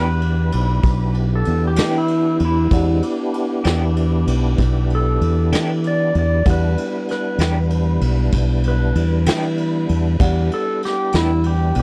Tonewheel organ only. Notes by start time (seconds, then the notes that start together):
Already playing: B3 D4 E4 G4
2.71 G#3 C4 D4 E4
3.03 B3 D4 E4 G4
6.47 G3 B3 D4 E4
10.19 G3 B3 D4 E4